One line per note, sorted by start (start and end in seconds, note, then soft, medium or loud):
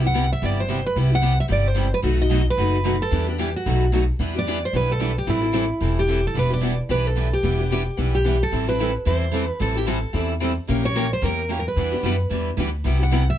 0.00 0.31 C2 medium
0.00 0.14 E4 soft
0.00 0.13 G4 soft
0.04 0.14 B3 soft
0.04 0.30 F#5 medium
0.14 0.24 C3 medium
0.14 0.25 G3 medium
0.14 0.25 B3 medium
0.14 0.25 E4 medium
0.14 0.25 G4 medium
0.32 0.45 E5 medium
0.42 0.85 G1 medium
0.42 0.60 C3 medium
0.42 0.60 G3 medium
0.42 0.61 B3 medium
0.42 0.61 E4 medium
0.42 0.61 G4 medium
0.42 0.59 D5 medium
0.60 0.86 C5 medium
0.68 0.79 C3 medium
0.68 0.79 G3 medium
0.68 0.79 B3 medium
0.68 0.79 E4 medium
0.68 0.79 G4 medium
0.86 0.96 B4 medium
0.96 1.39 C2 medium
0.96 1.10 C3 medium
0.96 1.11 G3 medium
0.96 1.11 B3 medium
0.96 1.10 E4 medium
0.96 1.09 G4 medium
1.10 1.21 B3 soft
1.10 1.21 E4 soft
1.10 1.22 G4 soft
1.15 1.40 F#5 medium
1.22 1.32 C3 medium
1.22 1.32 G3 medium
1.22 1.33 B3 medium
1.22 1.33 E4 medium
1.22 1.33 G4 medium
1.40 1.45 E5 medium
1.48 1.93 G1 medium
1.48 1.67 C3 medium
1.48 1.67 G3 medium
1.48 1.67 B3 medium
1.48 1.67 E4 medium
1.48 1.68 G4 medium
1.52 1.67 D5 medium
1.67 1.94 C5 medium
1.74 1.86 C3 medium
1.74 1.86 G3 medium
1.74 1.86 B3 medium
1.74 1.86 E4 medium
1.74 1.86 G4 medium
1.94 1.99 B4 medium
2.02 2.47 B1 medium
2.02 2.18 B2 medium
2.02 2.18 F#3 medium
2.02 2.18 A3 medium
2.02 2.18 D#4 medium
2.02 2.17 F#4 medium
2.02 2.22 B4 medium
2.18 2.29 A3 soft
2.18 2.30 D#4 soft
2.18 2.30 F#4 medium
2.18 2.45 D#5 medium
2.30 2.41 B2 medium
2.30 2.41 F#3 medium
2.30 2.41 A3 medium
2.30 2.41 D#4 medium
2.30 2.41 F#4 medium
2.30 2.41 B4 medium
2.50 3.02 B4 medium
2.57 3.01 F#1 medium
2.57 2.76 B2 medium
2.57 2.76 F#3 medium
2.57 2.76 A3 medium
2.57 2.76 D#4 medium
2.57 2.77 F#4 medium
2.57 2.76 B4 medium
2.84 2.94 B2 medium
2.84 2.95 F#3 medium
2.84 2.95 A3 medium
2.84 2.95 D#4 medium
2.84 2.95 F#4 medium
2.84 2.95 B4 medium
3.02 3.26 A4 medium
3.11 3.55 E2 medium
3.11 3.26 E3 medium
3.11 3.30 G3 medium
3.11 3.26 B3 medium
3.11 3.26 D4 medium
3.11 3.30 E4 medium
3.11 3.26 G4 medium
3.11 3.30 B4 medium
3.27 3.38 B3 soft
3.27 3.38 D4 soft
3.27 3.38 G4 soft
3.38 3.49 E3 medium
3.38 3.49 G3 medium
3.38 3.49 B3 medium
3.38 3.49 D4 medium
3.38 3.49 E4 medium
3.38 3.49 G4 medium
3.38 3.55 G4 medium
3.38 3.49 B4 medium
3.56 3.91 F#4 medium
3.66 4.09 B1 medium
3.66 3.84 B2 medium
3.66 3.84 F#3 medium
3.66 3.84 A3 medium
3.66 3.84 D#4 medium
3.66 3.85 F#4 medium
3.66 3.85 B4 medium
3.92 4.03 B2 medium
3.92 4.03 F#3 medium
3.92 4.03 A3 medium
3.92 4.03 D#4 medium
3.92 4.03 F#4 medium
3.92 4.03 B4 medium
4.19 4.63 E2 medium
4.19 4.34 E3 medium
4.19 4.38 G3 medium
4.19 4.34 B3 medium
4.19 4.34 D4 medium
4.19 4.39 E4 medium
4.19 4.34 G4 medium
4.19 4.39 B4 medium
4.35 4.46 B3 soft
4.35 4.47 D4 soft
4.35 4.46 G4 medium
4.35 4.64 D5 medium
4.47 4.57 E3 medium
4.47 4.57 G3 medium
4.47 4.57 B3 medium
4.47 4.58 D4 medium
4.47 4.58 E4 medium
4.47 4.58 G4 medium
4.47 4.58 B4 medium
4.65 4.76 C5 medium
4.73 5.17 B1 medium
4.73 4.92 E3 medium
4.73 4.92 G3 medium
4.73 4.92 B3 medium
4.73 4.92 D4 medium
4.73 4.93 E4 medium
4.73 4.92 G4 medium
4.73 4.93 B4 medium
4.73 4.91 B4 medium
4.92 5.16 A4 medium
5.00 5.10 E3 medium
5.00 5.11 G3 medium
5.00 5.11 B3 medium
5.00 5.11 D4 medium
5.00 5.11 E4 medium
5.00 5.11 G4 medium
5.00 5.11 B4 medium
5.18 5.29 G4 medium
5.27 5.71 A1 medium
5.27 5.42 E3 medium
5.27 5.42 G3 medium
5.27 5.42 C4 medium
5.27 5.42 E4 medium
5.27 6.00 E4 medium
5.27 5.40 A4 medium
5.41 5.52 C4 soft
5.41 5.52 E4 soft
5.41 5.53 A4 medium
5.53 5.64 E3 medium
5.53 5.64 G3 medium
5.53 5.64 C4 medium
5.53 5.64 E4 medium
5.53 5.65 A4 medium
5.81 6.24 E1 medium
5.81 6.00 E3 medium
5.81 6.00 G3 medium
5.81 6.00 C4 medium
5.81 6.00 E4 medium
5.81 6.00 A4 medium
5.99 6.26 G4 medium
6.09 6.19 E3 medium
6.09 6.19 G3 medium
6.09 6.19 C4 medium
6.09 6.19 E4 medium
6.09 6.20 A4 medium
6.27 6.38 A4 medium
6.35 6.79 E1 medium
6.35 6.50 E3 medium
6.35 6.54 G3 medium
6.35 6.51 B3 medium
6.35 6.50 D4 medium
6.35 6.54 E4 medium
6.35 6.49 G4 medium
6.35 6.54 B4 medium
6.39 6.53 B4 medium
6.50 6.62 B3 soft
6.50 6.62 D4 soft
6.50 6.62 G4 medium
6.50 6.78 D5 medium
6.61 6.73 E3 medium
6.61 6.72 G3 medium
6.61 6.73 B3 medium
6.61 6.73 D4 medium
6.61 6.72 E4 medium
6.61 6.74 G4 medium
6.61 6.72 B4 medium
6.89 7.33 B1 medium
6.89 7.08 E3 medium
6.89 7.08 G3 medium
6.89 7.08 B3 medium
6.89 7.08 D4 medium
6.89 7.08 E4 medium
6.89 7.08 G4 medium
6.89 7.09 B4 medium
6.89 7.07 B4 medium
7.07 7.34 A4 medium
7.16 7.27 E3 medium
7.16 7.27 G3 medium
7.16 7.27 B3 medium
7.16 7.27 D4 medium
7.16 7.27 E4 medium
7.16 7.27 G4 medium
7.16 7.27 B4 medium
7.33 8.14 G4 medium
7.43 7.87 E1 medium
7.43 7.58 E3 medium
7.43 7.62 G3 medium
7.43 7.59 B3 medium
7.43 7.59 D4 medium
7.43 7.62 E4 medium
7.43 7.58 G4 medium
7.43 7.63 B4 medium
7.59 7.71 B3 soft
7.59 7.71 D4 soft
7.59 7.70 G4 medium
7.71 7.81 E3 medium
7.71 7.81 G3 medium
7.71 7.82 B3 medium
7.71 7.82 D4 medium
7.71 7.82 E4 medium
7.71 7.82 G4 loud
7.71 7.82 B4 medium
7.97 8.41 B1 medium
7.97 8.16 E3 medium
7.97 8.17 G3 medium
7.97 8.16 B3 medium
7.97 8.16 D4 medium
7.97 8.17 E4 medium
7.97 8.17 G4 medium
7.97 8.17 B4 medium
8.15 8.42 G4 medium
8.24 8.35 E3 medium
8.24 8.36 G3 medium
8.24 8.35 B3 medium
8.24 8.35 D4 medium
8.24 8.36 E4 medium
8.24 8.35 G4 medium
8.24 8.36 B4 medium
8.43 8.68 A4 medium
8.51 8.95 A1 medium
8.51 8.66 E3 medium
8.51 8.67 G3 medium
8.51 8.67 C4 medium
8.51 8.67 E4 medium
8.51 8.66 A4 medium
8.67 8.79 C4 soft
8.67 8.79 E4 soft
8.67 8.79 A4 medium
8.67 8.93 B4 medium
8.79 8.89 E3 medium
8.79 8.90 G3 medium
8.79 8.90 C4 medium
8.79 8.90 E4 medium
8.79 8.90 A4 medium
9.06 9.49 E2 medium
9.06 9.25 E3 medium
9.06 9.25 G3 medium
9.06 9.25 C4 medium
9.06 9.25 E4 medium
9.06 9.25 A4 medium
9.06 9.47 C5 medium
9.33 9.43 E3 medium
9.33 9.44 G3 medium
9.33 9.44 C4 medium
9.33 9.44 E4 medium
9.33 9.44 A4 medium
9.47 9.61 B4 medium
9.60 10.04 A1 medium
9.60 9.75 E3 medium
9.60 9.75 G3 medium
9.60 9.75 C4 medium
9.60 9.75 E4 medium
9.60 9.74 A4 medium
9.60 9.77 A4 medium
9.75 9.86 C4 soft
9.75 9.86 E4 soft
9.75 9.88 G4 medium
9.75 9.87 A4 medium
9.87 9.97 E3 medium
9.87 9.98 G3 medium
9.87 9.98 C4 medium
9.87 9.98 E4 medium
9.87 10.13 A4 medium
9.87 9.98 A4 medium
10.13 10.57 E2 medium
10.13 10.32 E3 medium
10.13 10.32 G3 medium
10.13 10.32 C4 medium
10.13 10.32 E4 medium
10.13 10.32 A4 medium
10.40 10.51 E3 medium
10.40 10.51 G3 medium
10.40 10.51 C4 medium
10.40 10.51 E4 medium
10.40 10.52 A4 medium
10.68 11.12 A#1 medium
10.68 10.83 E3 medium
10.68 10.83 A#3 medium
10.68 10.84 C#4 medium
10.68 10.83 G4 medium
10.68 10.82 A#4 medium
10.83 10.95 C#4 soft
10.83 10.95 G4 soft
10.83 10.95 A#4 soft
10.83 11.12 C#5 loud
10.96 11.06 E3 medium
10.96 11.06 A#3 medium
10.96 11.06 C#4 loud
10.96 11.06 G4 loud
10.96 11.06 A#4 loud
11.13 11.23 C5 medium
11.22 11.66 E2 medium
11.22 11.41 E3 medium
11.22 11.41 A#3 medium
11.22 11.41 C#4 medium
11.22 11.41 G4 medium
11.22 11.41 A#4 medium
11.22 11.49 A#4 medium
11.50 11.60 E3 medium
11.50 11.60 A#3 medium
11.50 11.60 C#4 medium
11.50 11.60 G4 medium
11.50 11.61 A#4 medium
11.59 11.66 A#4 medium
11.68 12.55 B4 medium
11.76 11.98 E2 medium
11.76 11.92 E3 medium
11.76 11.95 G3 medium
11.76 11.92 B3 medium
11.76 11.92 D4 medium
11.76 11.95 E4 medium
11.76 11.91 G4 medium
11.76 11.95 B4 medium
11.92 12.04 B3 soft
11.92 12.04 D4 soft
11.92 12.03 G4 medium
12.03 12.26 F#2 medium
12.03 12.15 E3 medium
12.03 12.14 G3 medium
12.03 12.15 B3 medium
12.03 12.15 D4 loud
12.03 12.14 E4 medium
12.03 12.15 G4 loud
12.03 12.14 B4 medium
12.30 12.54 E2 medium
12.30 12.49 E3 medium
12.30 12.49 G3 medium
12.30 12.50 B3 medium
12.30 12.50 D4 medium
12.30 12.49 E4 medium
12.30 12.50 G4 medium
12.30 12.49 B4 medium
12.57 12.81 D2 medium
12.57 12.69 E3 medium
12.57 12.68 G3 medium
12.57 12.68 B3 medium
12.57 12.69 D4 medium
12.57 12.68 E4 medium
12.57 12.69 G4 medium
12.57 12.68 B4 medium
12.85 13.28 C2 medium
12.85 13.00 C3 medium
12.85 13.00 G3 medium
12.85 13.00 B3 medium
12.85 12.99 E4 medium
12.85 12.98 G4 medium
12.99 13.11 B3 soft
12.99 13.11 E4 soft
12.99 13.11 G4 medium
12.99 13.29 F#5 medium
13.12 13.22 C3 medium
13.12 13.22 G3 medium
13.12 13.22 B3 medium
13.12 13.22 E4 medium
13.12 13.23 G4 medium
13.30 13.38 E5 medium